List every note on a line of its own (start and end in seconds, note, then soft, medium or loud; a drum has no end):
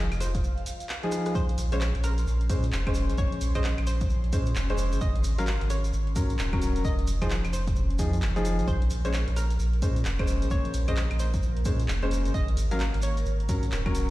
0.00 1.36 F4 medium
0.00 1.36 F5 medium
0.12 0.42 F1 loud
0.12 closed hi-hat medium
0.12 claves medium
0.12 maracas soft
0.20 1.28 C5 loud
0.20 cross-stick medium
0.20 open hi-hat loud
0.20 maracas medium
0.34 kick loud
0.34 closed hi-hat medium
0.34 maracas soft
0.44 maracas medium
0.58 closed hi-hat soft
0.66 open hi-hat loud
0.66 maracas medium
0.80 closed hi-hat medium
0.80 maracas soft
0.89 clap loud
0.89 maracas medium
1.03 1.34 F3 medium
1.03 1.34 D#4 medium
1.03 1.34 G#4 medium
1.03 closed hi-hat soft
1.12 cross-stick medium
1.12 open hi-hat loud
1.12 maracas loud
1.26 cross-stick medium
1.26 closed hi-hat medium
1.26 maracas soft
1.35 8.69 C#4 medium
1.35 1.57 C5 loud
1.35 8.69 C6 medium
1.35 kick loud
1.35 maracas medium
1.49 closed hi-hat medium
1.58 1.92 A#1 loud
1.58 open hi-hat loud
1.58 maracas medium
1.72 1.80 G#3 medium
1.72 1.80 C#4 medium
1.72 1.80 C5 loud
1.72 1.93 C#5 medium
1.72 closed hi-hat medium
1.72 maracas soft
1.81 clap loud
1.81 maracas soft
1.95 2.25 A#1 loud
1.95 closed hi-hat medium
2.04 3.11 A#4 loud
2.04 cross-stick medium
2.04 open hi-hat loud
2.04 maracas medium
2.18 closed hi-hat medium
2.18 maracas soft
2.27 2.51 A#1 loud
2.27 maracas medium
2.41 closed hi-hat soft
2.49 2.70 A#2 medium
2.49 2.63 G#3 medium
2.49 2.63 C#4 medium
2.49 2.63 C5 medium
2.49 kick loud
2.49 open hi-hat loud
2.49 maracas medium
2.63 closed hi-hat medium
2.63 maracas soft
2.72 3.11 F1 medium
2.72 clap loud
2.72 maracas medium
2.87 3.52 G#3 medium
2.87 3.52 C#4 medium
2.87 3.52 C5 loud
2.87 kick loud
2.87 closed hi-hat soft
2.87 claves medium
2.94 open hi-hat loud
2.94 maracas medium
3.10 3.39 A#1 medium
3.10 closed hi-hat medium
3.10 maracas soft
3.18 3.40 C#5 loud
3.18 kick loud
3.18 maracas medium
3.32 closed hi-hat soft
3.41 3.75 A#1 loud
3.41 open hi-hat loud
3.41 maracas medium
3.55 3.64 G#3 loud
3.55 3.64 C#4 medium
3.55 3.64 C5 loud
3.55 3.76 D#5 medium
3.55 kick medium
3.55 closed hi-hat medium
3.55 claves medium
3.55 maracas soft
3.64 clap loud
3.64 maracas medium
3.78 4.08 A#1 loud
3.78 closed hi-hat medium
3.78 claves medium
3.87 4.94 C5 loud
3.87 open hi-hat medium
3.87 maracas medium
4.01 kick loud
4.01 closed hi-hat medium
4.01 maracas soft
4.10 4.34 A#1 loud
4.10 maracas medium
4.24 closed hi-hat soft
4.33 4.53 A#2 medium
4.33 4.46 G#3 medium
4.33 4.46 C#4 medium
4.33 4.46 C5 loud
4.33 kick loud
4.33 open hi-hat loud
4.33 maracas medium
4.46 closed hi-hat medium
4.46 maracas soft
4.56 4.94 F1 medium
4.56 clap loud
4.56 maracas medium
4.70 5.00 G#3 loud
4.70 5.00 C#4 medium
4.70 5.00 C5 loud
4.70 closed hi-hat soft
4.78 open hi-hat loud
4.78 maracas loud
4.92 5.23 G#1 medium
4.92 closed hi-hat medium
4.92 maracas soft
5.01 5.23 D#5 loud
5.01 kick loud
5.01 maracas medium
5.16 closed hi-hat medium
5.24 5.58 G#1 loud
5.24 open hi-hat loud
5.24 maracas loud
5.38 5.47 F#3 loud
5.38 5.47 C#4 medium
5.38 5.47 A#4 loud
5.38 5.59 F5 medium
5.38 closed hi-hat medium
5.38 maracas soft
5.47 clap loud
5.47 maracas medium
5.61 5.91 G#1 loud
5.61 closed hi-hat medium
5.70 6.78 C#5 loud
5.70 cross-stick medium
5.70 open hi-hat medium
5.70 maracas medium
5.84 closed hi-hat medium
5.84 maracas soft
5.93 6.17 G#1 loud
5.93 maracas medium
6.07 closed hi-hat soft
6.16 6.36 G#2 medium
6.16 6.29 F#3 medium
6.16 6.29 C#4 medium
6.16 6.29 A#4 loud
6.16 kick loud
6.16 open hi-hat loud
6.16 maracas loud
6.30 closed hi-hat medium
6.30 maracas soft
6.39 6.77 D#1 medium
6.39 clap loud
6.39 maracas medium
6.53 6.83 F#3 medium
6.53 6.83 C#4 medium
6.53 6.83 A#4 loud
6.53 kick loud
6.53 closed hi-hat soft
6.53 claves medium
6.62 open hi-hat medium
6.62 maracas loud
6.76 7.06 F1 medium
6.76 closed hi-hat medium
6.76 maracas soft
6.85 7.06 D#5 loud
6.85 kick loud
6.85 maracas medium
6.99 closed hi-hat medium
7.07 7.42 F1 medium
7.07 open hi-hat loud
7.07 maracas loud
7.22 7.30 F3 loud
7.22 7.30 D#4 medium
7.22 7.30 G#4 loud
7.22 7.42 C5 loud
7.22 kick medium
7.22 closed hi-hat medium
7.22 claves medium
7.22 maracas soft
7.30 clap loud
7.30 maracas medium
7.44 7.74 F1 loud
7.44 closed hi-hat medium
7.44 claves medium
7.44 maracas soft
7.53 8.61 C5 medium
7.53 open hi-hat medium
7.53 maracas loud
7.67 kick loud
7.67 closed hi-hat medium
7.67 maracas soft
7.76 8.01 F1 loud
7.76 maracas medium
7.90 closed hi-hat soft
7.99 8.23 F2 medium
7.99 8.13 F3 medium
7.99 8.13 D#4 medium
7.99 8.13 G#4 medium
7.99 kick loud
7.99 open hi-hat loud
7.99 maracas loud
8.13 closed hi-hat medium
8.13 maracas soft
8.21 8.60 F1 loud
8.21 clap loud
8.21 maracas medium
8.36 8.67 F3 loud
8.36 8.67 D#4 medium
8.36 8.67 G#4 loud
8.36 closed hi-hat soft
8.36 maracas soft
8.45 open hi-hat medium
8.45 maracas loud
8.59 8.89 A#1 loud
8.59 closed hi-hat medium
8.59 maracas soft
8.68 14.10 A#3 medium
8.68 14.10 A#4 medium
8.68 8.89 C5 loud
8.68 kick loud
8.68 maracas medium
8.82 closed hi-hat medium
8.90 9.25 A#1 loud
8.90 open hi-hat loud
8.90 maracas medium
9.05 9.13 G#3 medium
9.05 9.13 C#4 medium
9.05 9.13 C5 loud
9.05 9.26 C#5 medium
9.05 closed hi-hat medium
9.05 maracas soft
9.13 clap loud
9.13 maracas medium
9.28 9.58 A#1 loud
9.28 closed hi-hat medium
9.36 10.44 A#4 loud
9.36 cross-stick medium
9.36 open hi-hat medium
9.36 maracas medium
9.51 closed hi-hat medium
9.51 maracas soft
9.59 9.84 A#1 loud
9.59 maracas medium
9.73 closed hi-hat soft
9.82 10.03 A#2 medium
9.82 9.96 G#3 medium
9.82 9.96 C#4 medium
9.82 9.96 C5 loud
9.82 kick loud
9.82 open hi-hat loud
9.82 maracas medium
9.96 closed hi-hat medium
9.96 maracas soft
10.05 10.44 F1 medium
10.05 clap loud
10.05 maracas medium
10.19 10.85 G#3 medium
10.19 10.85 C#4 medium
10.19 10.85 C5 loud
10.19 kick loud
10.19 closed hi-hat soft
10.19 claves medium
10.27 open hi-hat medium
10.27 maracas medium
10.42 10.72 A#1 medium
10.42 closed hi-hat medium
10.42 maracas soft
10.50 10.73 C#5 loud
10.50 kick loud
10.50 maracas medium
10.65 closed hi-hat medium
10.74 11.08 A#1 loud
10.74 open hi-hat loud
10.74 maracas medium
10.88 10.96 G#3 loud
10.88 10.96 C#4 medium
10.88 10.96 C5 loud
10.88 11.09 D#5 medium
10.88 kick medium
10.88 closed hi-hat medium
10.88 claves medium
10.88 maracas soft
10.96 clap loud
10.96 maracas soft
11.11 11.41 A#1 loud
11.11 closed hi-hat medium
11.11 claves medium
11.19 12.27 C5 loud
11.19 open hi-hat medium
11.19 maracas medium
11.34 kick loud
11.34 closed hi-hat medium
11.34 maracas soft
11.43 11.67 A#1 loud
11.43 maracas soft
11.57 closed hi-hat soft
11.65 11.86 A#2 medium
11.65 11.79 G#3 medium
11.65 11.79 C#4 medium
11.65 11.79 C5 medium
11.65 kick loud
11.65 open hi-hat loud
11.65 maracas medium
11.80 closed hi-hat medium
11.80 maracas soft
11.88 12.27 F1 medium
11.88 clap loud
11.88 maracas medium
12.02 12.33 G#3 loud
12.02 12.33 C#4 medium
12.02 12.33 C5 loud
12.02 closed hi-hat soft
12.11 open hi-hat medium
12.11 maracas medium
12.25 12.55 G#1 medium
12.25 closed hi-hat medium
12.25 maracas soft
12.34 12.56 D#5 loud
12.34 kick loud
12.34 maracas medium
12.48 closed hi-hat medium
12.57 12.91 G#1 loud
12.57 open hi-hat loud
12.57 maracas medium
12.71 12.80 F#3 loud
12.71 12.80 C#4 medium
12.71 12.80 A#4 loud
12.71 12.92 F5 medium
12.71 closed hi-hat medium
12.71 maracas soft
12.80 clap loud
12.80 maracas soft
12.94 13.24 G#1 loud
12.94 closed hi-hat medium
13.02 14.10 C#5 loud
13.02 open hi-hat loud
13.02 maracas medium
13.17 closed hi-hat medium
13.17 maracas soft
13.26 13.50 G#1 loud
13.26 maracas soft
13.40 closed hi-hat soft
13.49 13.69 G#2 medium
13.49 13.62 F#3 medium
13.49 13.62 C#4 medium
13.49 13.62 A#4 loud
13.49 kick loud
13.49 open hi-hat loud
13.49 maracas medium
13.63 closed hi-hat medium
13.63 maracas soft
13.72 14.10 D#1 medium
13.72 clap loud
13.72 maracas soft
13.86 14.10 F#3 loud
13.86 14.10 C#4 medium
13.86 14.10 A#4 loud
13.86 kick loud
13.86 closed hi-hat soft
13.86 claves medium
13.95 open hi-hat loud
13.95 maracas loud